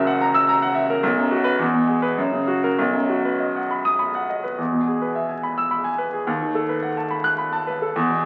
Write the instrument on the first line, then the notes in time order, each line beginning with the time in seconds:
grand piano
Already playing: F#1 F#2 C#3 F#4 A#4 E5
0.07 F#5
0.21 A#5
0.34 E6
0.49 A#5
0.62 F#5
0.75 E5
0.90 A#4
1.03 B1
1.17 F#2
1.31 F#4
1.44 B4
1.59 E2
1.74 B2
1.88 G#4
2.02 B4
2.18 F#2
2.32 C#3
2.48 F#4
2.64 A#4
2.78 B1
2.93 F#2
3.10 F#4
3.25 B4
3.40 D#5
3.56 F#5
3.71 B5
3.85 D#6
3.99 B5
4.15 F#5
4.30 D#5
4.44 B4
4.58 E2
4.72 B2
4.88 G#4
5.01 B4
5.15 E5
5.29 G#5
5.43 B5
5.58 E6
5.71 B5
5.84 G#5
5.98 B4
6.13 G#4
6.27 D#2
6.42 D#3
6.55 A4
6.69 B4
6.83 F#5
6.97 A5
7.11 B5
7.24 F#6
7.38 B5
7.53 A5
7.67 B4
7.82 A4
7.96 E2
8.09 B2